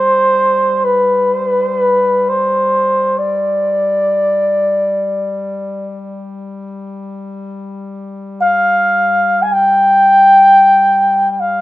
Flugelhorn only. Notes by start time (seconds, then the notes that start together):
Already playing: C5
0.84 B4
2.29 C5
3.18 D5
8.40 F5
9.43 G#5
9.52 G5
11.30 G5
11.40 F5